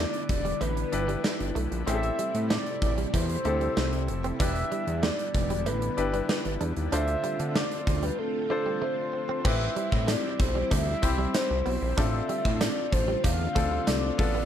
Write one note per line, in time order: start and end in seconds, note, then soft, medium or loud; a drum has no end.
0.00 1.85 D3 medium
0.00 1.85 G3 medium
0.00 1.85 B3 medium
0.00 0.27 D4 medium
0.00 0.27 E4 medium
0.00 6.89 E4 medium
0.00 0.27 G4 medium
0.00 0.27 B4 medium
0.00 0.27 D5 medium
0.14 closed hi-hat soft
0.29 0.53 E1 medium
0.29 0.63 D5 medium
0.29 muted clean electric guitar stroke soft
0.29 kick medium
0.29 closed hi-hat medium
0.45 0.56 G3 medium
0.45 closed hi-hat soft
0.61 0.85 A1 loud
0.61 0.72 A3 medium
0.61 1.56 B4 medium
0.61 closed hi-hat medium
0.61 cowbell medium
0.77 muted clean electric guitar stroke soft
0.77 closed hi-hat medium
0.92 1.16 G1 medium
0.92 1.62 D4 medium
0.92 1.62 E4 medium
0.92 1.62 G4 medium
0.92 1.62 B4 medium
0.92 closed hi-hat medium
1.08 1.19 G3 medium
1.08 closed hi-hat soft
1.24 snare loud
1.24 cowbell medium
1.40 1.52 G1 medium
1.40 closed hi-hat soft
1.55 1.67 B1 medium
1.55 1.67 A3 medium
1.55 closed hi-hat medium
1.71 1.83 A#1 medium
1.71 closed hi-hat medium
1.86 2.11 A1 loud
1.86 4.37 C3 medium
1.86 4.37 G3 medium
1.86 4.37 A3 medium
1.86 1.98 A3 medium
1.86 2.79 C4 medium
1.86 2.80 E4 medium
1.86 2.80 G4 medium
1.86 1.94 G#4 medium
1.86 2.47 E5 loud
1.86 closed hi-hat medium
1.86 cowbell medium
1.94 2.83 A4 medium
2.03 muted clean electric guitar stroke soft
2.03 closed hi-hat soft
2.19 2.30 G3 medium
2.19 closed hi-hat medium
2.35 2.58 A2 loud
2.35 closed hi-hat medium
2.50 2.61 A3 medium
2.50 2.80 D5 medium
2.50 snare loud
2.50 cowbell medium
2.66 closed hi-hat soft
2.82 3.06 A1 medium
2.82 2.93 D5 medium
2.82 muted clean electric guitar stroke soft
2.82 kick medium
2.82 closed hi-hat medium
2.98 3.09 G3 medium
2.98 closed hi-hat soft
3.07 3.16 D5 medium
3.14 3.37 E2 loud
3.14 4.09 C5 medium
3.14 muted clean electric guitar stroke soft
3.14 kick medium
3.14 closed hi-hat medium
3.14 cowbell medium
3.29 closed hi-hat medium
3.44 3.69 D2 medium
3.44 3.56 A3 medium
3.44 4.14 C4 medium
3.44 4.14 E4 medium
3.44 4.15 G4 medium
3.44 4.15 A4 medium
3.44 closed hi-hat medium
3.61 3.72 G3 medium
3.61 closed hi-hat soft
3.77 4.10 C2 loud
3.77 3.88 A3 medium
3.77 snare loud
3.77 cowbell medium
3.93 closed hi-hat soft
4.08 4.32 F1 medium
4.08 muted clean electric guitar stroke soft
4.08 closed hi-hat medium
4.24 4.35 C4 medium
4.24 closed hi-hat medium
4.39 4.64 E1 loud
4.39 9.41 D3 medium
4.39 4.51 E3 medium
4.39 6.90 G3 medium
4.39 6.90 B3 medium
4.39 5.32 D4 medium
4.39 5.33 E4 medium
4.39 5.33 G4 medium
4.39 5.33 B4 medium
4.39 5.04 E5 loud
4.39 kick loud
4.39 closed hi-hat medium
4.39 cowbell medium
4.55 muted clean electric guitar stroke soft
4.55 closed hi-hat soft
4.72 4.83 G3 medium
4.72 closed hi-hat medium
4.87 5.11 E2 medium
4.87 closed hi-hat medium
5.03 5.14 A3 medium
5.03 5.33 D5 loud
5.03 snare loud
5.03 cowbell medium
5.19 closed hi-hat soft
5.34 5.68 E1 loud
5.34 5.67 D5 medium
5.34 muted clean electric guitar stroke soft
5.34 kick medium
5.34 closed hi-hat medium
5.50 5.62 G3 medium
5.50 closed hi-hat soft
5.66 5.90 A1 medium
5.66 5.77 A3 medium
5.66 6.61 B4 medium
5.66 closed hi-hat medium
5.66 cowbell medium
5.82 muted clean electric guitar stroke soft
5.82 closed hi-hat medium
5.97 6.22 G1 medium
5.97 6.67 D4 medium
5.97 6.67 E4 medium
5.97 6.67 G4 medium
5.97 6.67 B4 medium
5.97 closed hi-hat medium
6.14 6.25 G3 medium
6.14 closed hi-hat soft
6.29 snare loud
6.29 cowbell medium
6.45 6.57 G1 medium
6.45 closed hi-hat soft
6.61 6.73 E2 medium
6.61 6.72 D4 medium
6.61 closed hi-hat medium
6.77 6.89 D#2 medium
6.77 closed hi-hat medium
6.92 7.16 D2 loud
6.92 9.43 A3 medium
6.92 9.43 C4 medium
6.92 7.85 D4 medium
6.92 7.03 D4 medium
6.92 7.85 F4 medium
6.92 9.43 F4 medium
6.92 7.85 A4 medium
6.92 7.86 C5 medium
6.92 7.58 E5 loud
6.92 closed hi-hat medium
6.92 cowbell medium
7.08 muted clean electric guitar stroke soft
7.08 closed hi-hat soft
7.24 7.35 G3 medium
7.24 closed hi-hat medium
7.39 7.64 D3 loud
7.39 closed hi-hat medium
7.55 7.67 A3 medium
7.55 8.05 D5 loud
7.55 snare loud
7.55 cowbell medium
7.71 closed hi-hat medium
7.87 8.11 D2 medium
7.87 muted clean electric guitar stroke soft
7.87 kick medium
7.87 closed hi-hat medium
8.03 8.14 G3 medium
8.03 8.20 B4 medium
8.03 closed hi-hat medium
8.19 8.82 A4 medium
8.19 muted clean electric guitar stroke soft
8.50 8.61 A3 medium
8.50 9.20 D4 medium
8.50 9.20 F4 medium
8.50 9.20 A4 medium
8.50 9.20 C5 medium
8.66 8.77 G3 medium
8.82 8.93 A3 medium
8.82 9.47 C5 medium
9.13 muted clean electric guitar stroke soft
9.29 9.40 C4 medium
9.45 9.69 A1 loud
9.45 11.95 G3 medium
9.45 10.38 C4 medium
9.45 9.56 C4 medium
9.45 11.95 C4 medium
9.45 10.38 E4 medium
9.45 11.95 E4 medium
9.45 10.38 G4 medium
9.45 10.38 B4 medium
9.45 10.10 E5 loud
9.45 kick loud
9.45 crash loud
9.45 cowbell medium
9.61 muted clean electric guitar stroke soft
9.76 9.88 G3 medium
9.76 closed hi-hat medium
9.92 10.16 A2 medium
9.92 kick medium
10.08 10.19 A3 medium
10.08 10.42 D5 medium
10.08 snare loud
10.08 closed hi-hat medium
10.08 tambourine medium
10.08 cowbell medium
10.39 10.63 B1 medium
10.39 10.72 C5 medium
10.39 muted clean electric guitar stroke soft
10.39 kick loud
10.39 closed hi-hat medium
10.55 10.67 G3 medium
10.71 10.95 D2 medium
10.71 10.82 A3 medium
10.71 11.36 E5 loud
10.71 kick medium
10.71 closed hi-hat medium
10.71 cowbell medium
10.87 muted clean electric guitar stroke soft
11.02 11.27 C2 loud
11.02 11.72 C4 medium
11.02 11.72 E4 medium
11.02 11.72 G4 medium
11.02 11.73 B5 medium
11.02 kick medium
11.02 closed hi-hat medium
11.18 11.30 G3 medium
11.34 12.00 C5 medium
11.34 snare loud
11.34 closed hi-hat loud
11.34 tambourine medium
11.34 cowbell medium
11.50 11.62 C2 loud
11.66 11.78 B1 medium
11.66 11.77 B3 medium
11.66 open hi-hat medium
11.82 11.94 A#1 loud
11.97 12.21 A1 loud
11.97 14.45 D3 medium
11.97 14.45 A3 medium
11.97 12.90 C4 medium
11.97 14.17 C4 medium
11.97 12.09 D4 medium
11.97 12.90 D4 medium
11.97 14.45 F4 medium
11.97 12.90 F4 medium
11.97 12.91 A4 medium
11.97 12.63 E5 loud
11.97 kick loud
11.97 closed hi-hat loud
11.97 cowbell medium
12.13 muted clean electric guitar stroke soft
12.29 12.40 G3 medium
12.29 closed hi-hat medium
12.45 12.69 A2 loud
12.45 kick medium
12.61 12.72 A3 medium
12.61 12.94 D5 loud
12.61 snare loud
12.61 closed hi-hat medium
12.61 tambourine medium
12.61 cowbell medium
12.92 13.16 A1 medium
12.92 13.26 C5 loud
12.92 muted clean electric guitar stroke soft
12.92 kick medium
12.92 closed hi-hat medium
13.08 13.19 G3 medium
13.24 13.48 E2 loud
13.24 13.89 F5 loud
13.24 muted clean electric guitar stroke soft
13.24 kick medium
13.24 closed hi-hat loud
13.24 cowbell medium
13.55 13.80 D2 medium
13.55 13.67 A3 medium
13.55 14.19 C4 medium
13.55 14.17 D4 medium
13.55 14.17 F4 medium
13.55 14.18 A4 medium
13.55 kick loud
13.55 closed hi-hat medium
13.71 13.83 G3 medium
13.87 14.11 C2 loud
13.87 13.98 A3 medium
13.87 14.45 D5 loud
13.87 snare loud
13.87 closed hi-hat loud
13.87 tambourine medium
13.87 cowbell medium
14.18 14.45 A1 medium
14.18 14.45 B2 medium
14.18 14.45 B3 medium
14.18 14.45 D4 medium
14.18 14.45 F4 medium
14.18 14.45 A4 loud
14.18 muted clean electric guitar stroke soft
14.18 kick loud
14.18 open hi-hat medium
14.35 14.45 B3 medium